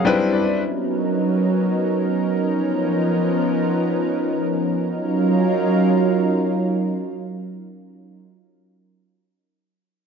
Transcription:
0, 0, Header, 1, 3, 480
1, 0, Start_track
1, 0, Key_signature, -6, "minor"
1, 0, Tempo, 500000
1, 9664, End_track
2, 0, Start_track
2, 0, Title_t, "Grand piano"
2, 0, Program_c, 0, 0
2, 0, Control_c, 0, 64, 127
2, 0, Note_on_c, 0, 68, 54
2, 0, Note_on_c, 0, 77, 62
2, 46, Note_on_c, 0, 55, 87
2, 50, Note_on_c, 0, 60, 82
2, 55, Note_on_c, 0, 62, 79
2, 55, Note_on_c, 0, 79, 73
2, 61, Note_on_c, 0, 64, 83
2, 64, Note_on_c, 0, 71, 102
2, 65, Control_c, 0, 64, 0
2, 174, Note_off_c, 0, 77, 0
2, 177, Note_off_c, 0, 68, 0
2, 241, Control_c, 0, 64, 127
2, 294, Note_off_c, 0, 79, 0
2, 315, Note_on_c, 0, 74, 68
2, 468, Note_off_c, 0, 55, 0
2, 470, Note_off_c, 0, 60, 0
2, 472, Note_off_c, 0, 62, 0
2, 475, Note_off_c, 0, 64, 0
2, 477, Note_off_c, 0, 71, 0
2, 554, Note_off_c, 0, 74, 0
2, 584, Control_c, 0, 64, 0
2, 9664, End_track
3, 0, Start_track
3, 0, Title_t, "Analog synth pad"
3, 0, Program_c, 1, 89
3, 50, Note_on_c, 1, 60, 68
3, 50, Note_on_c, 1, 62, 69
3, 51, Note_on_c, 1, 55, 75
3, 51, Note_on_c, 1, 64, 70
3, 51, Note_on_c, 1, 71, 81
3, 564, Note_off_c, 1, 60, 0
3, 564, Note_off_c, 1, 62, 0
3, 564, Note_off_c, 1, 71, 0
3, 565, Note_off_c, 1, 55, 0
3, 565, Note_off_c, 1, 64, 0
3, 566, Note_on_c, 1, 54, 86
3, 567, Note_on_c, 1, 61, 75
3, 568, Note_on_c, 1, 59, 72
3, 568, Note_on_c, 1, 63, 75
3, 568, Note_on_c, 1, 70, 89
3, 2366, Note_off_c, 1, 54, 0
3, 2367, Note_off_c, 1, 59, 0
3, 2386, Note_on_c, 1, 53, 83
3, 2387, Note_on_c, 1, 59, 77
3, 4681, Note_off_c, 1, 61, 0
3, 4682, Note_off_c, 1, 63, 0
3, 4682, Note_off_c, 1, 70, 0
3, 4698, Note_off_c, 1, 53, 0
3, 4698, Note_off_c, 1, 59, 0
3, 4720, Note_on_c, 1, 54, 79
3, 4720, Note_on_c, 1, 61, 77
3, 4720, Note_on_c, 1, 63, 72
3, 4720, Note_on_c, 1, 65, 76
3, 4720, Note_on_c, 1, 70, 91
3, 7845, Note_off_c, 1, 61, 0
3, 7846, Note_off_c, 1, 54, 0
3, 7846, Note_off_c, 1, 63, 0
3, 7846, Note_off_c, 1, 65, 0
3, 7846, Note_off_c, 1, 70, 0
3, 9664, End_track
0, 0, End_of_file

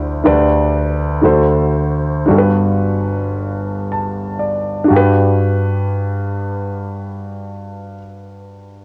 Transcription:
0, 0, Header, 1, 2, 480
1, 0, Start_track
1, 0, Key_signature, 1, "major"
1, 0, Tempo, 657174
1, 186, Time_signature, 6, 3, 24, 8
1, 1151, Tempo, 712589
1, 1631, Tempo, 773196
1, 2111, Tempo, 857143
1, 2591, Tempo, 983607
1, 3071, Tempo, 1061947
1, 4855, End_track
2, 0, Start_track
2, 0, Title_t, "Grand piano"
2, 0, Program_c, 0, 0
2, 0, Control_c, 0, 64, 127
2, 0, Note_on_c, 0, 38, 58
2, 0, Note_on_c, 0, 50, 60
2, 0, Note_on_c, 0, 64, 65
2, 0, Note_on_c, 0, 67, 51
2, 0, Note_on_c, 0, 72, 51
2, 0, Note_on_c, 0, 74, 62
2, 157, Note_off_c, 0, 38, 0
2, 157, Note_off_c, 0, 50, 0
2, 173, Note_off_c, 0, 67, 0
2, 174, Note_on_c, 0, 62, 64
2, 180, Note_off_c, 0, 64, 0
2, 183, Note_on_c, 0, 67, 55
2, 184, Note_off_c, 0, 74, 0
2, 184, Note_on_c, 0, 38, 69
2, 184, Note_on_c, 0, 50, 69
2, 188, Note_off_c, 0, 72, 0
2, 190, Note_on_c, 0, 71, 55
2, 194, Control_c, 0, 64, 0
2, 195, Note_on_c, 0, 74, 74
2, 326, Control_c, 0, 64, 127
2, 872, Note_off_c, 0, 38, 0
2, 872, Note_off_c, 0, 50, 0
2, 877, Note_off_c, 0, 62, 0
2, 888, Note_on_c, 0, 62, 60
2, 898, Note_on_c, 0, 66, 55
2, 900, Note_on_c, 0, 50, 51
2, 901, Note_off_c, 0, 67, 0
2, 901, Note_on_c, 0, 38, 54
2, 904, Note_on_c, 0, 69, 52
2, 905, Note_off_c, 0, 71, 0
2, 907, Note_off_c, 0, 74, 0
2, 910, Control_c, 0, 64, 0
2, 912, Note_on_c, 0, 72, 71
2, 1020, Control_c, 0, 64, 127
2, 1601, Note_off_c, 0, 62, 0
2, 1602, Note_off_c, 0, 50, 0
2, 1603, Note_off_c, 0, 38, 0
2, 1611, Note_on_c, 0, 62, 61
2, 1614, Note_off_c, 0, 66, 0
2, 1624, Note_on_c, 0, 66, 59
2, 1630, Note_on_c, 0, 31, 61
2, 1630, Note_on_c, 0, 43, 63
2, 1631, Note_off_c, 0, 69, 0
2, 1635, Note_off_c, 0, 72, 0
2, 1635, Note_on_c, 0, 67, 55
2, 1638, Control_c, 0, 64, 0
2, 1649, Note_on_c, 0, 69, 57
2, 1687, Note_off_c, 0, 69, 0
2, 1690, Note_on_c, 0, 71, 65
2, 1745, Control_c, 0, 64, 127
2, 2590, Note_on_c, 0, 81, 48
2, 2805, Note_off_c, 0, 81, 0
2, 2821, Note_on_c, 0, 74, 53
2, 3034, Note_off_c, 0, 62, 0
2, 3041, Note_on_c, 0, 62, 66
2, 3049, Note_off_c, 0, 66, 0
2, 3051, Note_off_c, 0, 31, 0
2, 3051, Note_off_c, 0, 43, 0
2, 3053, Note_off_c, 0, 67, 0
2, 3053, Note_off_c, 0, 74, 0
2, 3060, Note_on_c, 0, 66, 57
2, 3070, Note_on_c, 0, 43, 63
2, 3074, Note_off_c, 0, 71, 0
2, 3077, Control_c, 0, 64, 0
2, 3080, Note_on_c, 0, 67, 60
2, 3098, Note_on_c, 0, 71, 77
2, 3155, Control_c, 0, 64, 127
2, 4441, Note_off_c, 0, 62, 0
2, 4458, Note_off_c, 0, 66, 0
2, 4468, Note_off_c, 0, 43, 0
2, 4478, Note_off_c, 0, 67, 0
2, 4496, Note_off_c, 0, 71, 0
2, 4855, End_track
0, 0, End_of_file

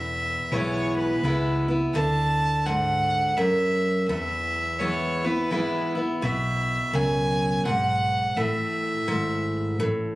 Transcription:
0, 0, Header, 1, 4, 480
1, 0, Start_track
1, 0, Tempo, 713436
1, 1309, Time_signature, 3, 2, 24, 8
1, 6830, End_track
2, 0, Start_track
2, 0, Title_t, "Fiddle"
2, 0, Program_c, 0, 110
2, 0, Note_on_c, 0, 76, 93
2, 352, Note_on_c, 0, 73, 78
2, 362, Note_off_c, 0, 76, 0
2, 642, Note_off_c, 0, 73, 0
2, 646, Note_on_c, 0, 71, 76
2, 1101, Note_off_c, 0, 71, 0
2, 1302, Note_on_c, 0, 81, 100
2, 1787, Note_on_c, 0, 78, 90
2, 1797, Note_off_c, 0, 81, 0
2, 2265, Note_on_c, 0, 76, 85
2, 2275, Note_off_c, 0, 78, 0
2, 2739, Note_off_c, 0, 76, 0
2, 2743, Note_on_c, 0, 76, 91
2, 3220, Note_on_c, 0, 73, 77
2, 3230, Note_off_c, 0, 76, 0
2, 3529, Note_on_c, 0, 71, 72
2, 3539, Note_off_c, 0, 73, 0
2, 4010, Note_off_c, 0, 71, 0
2, 4187, Note_on_c, 0, 76, 91
2, 4672, Note_on_c, 0, 80, 92
2, 4682, Note_off_c, 0, 76, 0
2, 5143, Note_off_c, 0, 80, 0
2, 5147, Note_on_c, 0, 78, 89
2, 5628, Note_on_c, 0, 76, 83
2, 5639, Note_off_c, 0, 78, 0
2, 6587, Note_off_c, 0, 76, 0
2, 6830, End_track
3, 0, Start_track
3, 0, Title_t, "Steel-string acoustic guitar"
3, 0, Program_c, 1, 25
3, 0, Note_on_c, 1, 40, 73
3, 348, Note_on_c, 1, 52, 56
3, 352, Note_on_c, 1, 56, 53
3, 358, Note_on_c, 1, 59, 62
3, 358, Note_on_c, 1, 64, 57
3, 794, Note_off_c, 1, 40, 0
3, 810, Note_off_c, 1, 52, 0
3, 813, Note_off_c, 1, 56, 0
3, 815, Note_off_c, 1, 59, 0
3, 816, Note_off_c, 1, 64, 0
3, 831, Note_on_c, 1, 52, 51
3, 836, Note_on_c, 1, 56, 54
3, 839, Note_on_c, 1, 59, 59
3, 841, Note_on_c, 1, 64, 59
3, 1119, Note_off_c, 1, 52, 0
3, 1122, Note_off_c, 1, 56, 0
3, 1123, Note_off_c, 1, 59, 0
3, 1123, Note_off_c, 1, 64, 0
3, 1131, Note_on_c, 1, 64, 54
3, 1144, Note_on_c, 1, 59, 44
3, 1302, Note_off_c, 1, 64, 0
3, 1308, Note_off_c, 1, 59, 0
3, 1311, Note_on_c, 1, 50, 80
3, 1792, Note_on_c, 1, 44, 78
3, 2235, Note_off_c, 1, 50, 0
3, 2253, Note_off_c, 1, 44, 0
3, 2271, Note_on_c, 1, 42, 80
3, 2733, Note_off_c, 1, 42, 0
3, 2753, Note_on_c, 1, 40, 77
3, 3229, Note_on_c, 1, 52, 52
3, 3232, Note_on_c, 1, 56, 51
3, 3235, Note_on_c, 1, 59, 54
3, 3239, Note_on_c, 1, 64, 62
3, 3519, Note_off_c, 1, 52, 0
3, 3520, Note_off_c, 1, 56, 0
3, 3520, Note_off_c, 1, 64, 0
3, 3522, Note_off_c, 1, 59, 0
3, 3528, Note_on_c, 1, 64, 56
3, 3540, Note_on_c, 1, 59, 49
3, 3676, Note_off_c, 1, 40, 0
3, 3701, Note_off_c, 1, 64, 0
3, 3703, Note_on_c, 1, 52, 53
3, 3704, Note_off_c, 1, 59, 0
3, 3710, Note_on_c, 1, 56, 56
3, 3712, Note_on_c, 1, 59, 54
3, 3716, Note_on_c, 1, 64, 58
3, 3995, Note_off_c, 1, 64, 0
3, 3996, Note_off_c, 1, 52, 0
3, 3999, Note_off_c, 1, 56, 0
3, 4000, Note_off_c, 1, 59, 0
3, 4003, Note_on_c, 1, 64, 48
3, 4015, Note_on_c, 1, 59, 44
3, 4178, Note_off_c, 1, 64, 0
3, 4184, Note_off_c, 1, 59, 0
3, 4187, Note_on_c, 1, 47, 80
3, 4666, Note_on_c, 1, 42, 75
3, 5112, Note_off_c, 1, 47, 0
3, 5129, Note_off_c, 1, 42, 0
3, 5149, Note_on_c, 1, 44, 82
3, 5610, Note_off_c, 1, 44, 0
3, 5632, Note_on_c, 1, 45, 79
3, 6108, Note_on_c, 1, 44, 82
3, 6553, Note_off_c, 1, 45, 0
3, 6569, Note_off_c, 1, 44, 0
3, 6591, Note_on_c, 1, 45, 81
3, 6830, Note_off_c, 1, 45, 0
3, 6830, End_track
4, 0, Start_track
4, 0, Title_t, "Fingered electric bass"
4, 0, Program_c, 2, 33
4, 0, Note_on_c, 2, 28, 72
4, 240, Note_off_c, 2, 28, 0
4, 348, Note_on_c, 2, 35, 76
4, 756, Note_off_c, 2, 35, 0
4, 827, Note_on_c, 2, 37, 77
4, 1236, Note_off_c, 2, 37, 0
4, 1307, Note_on_c, 2, 38, 77
4, 2421, Note_off_c, 2, 38, 0
4, 2751, Note_on_c, 2, 40, 78
4, 3863, Note_off_c, 2, 40, 0
4, 4192, Note_on_c, 2, 35, 72
4, 4562, Note_off_c, 2, 35, 0
4, 4664, Note_on_c, 2, 37, 74
4, 5074, Note_off_c, 2, 37, 0
4, 5148, Note_on_c, 2, 35, 76
4, 5556, Note_off_c, 2, 35, 0
4, 5627, Note_on_c, 2, 33, 80
4, 5998, Note_off_c, 2, 33, 0
4, 6111, Note_on_c, 2, 32, 74
4, 6517, Note_off_c, 2, 32, 0
4, 6585, Note_on_c, 2, 33, 76
4, 6830, Note_off_c, 2, 33, 0
4, 6830, End_track
0, 0, End_of_file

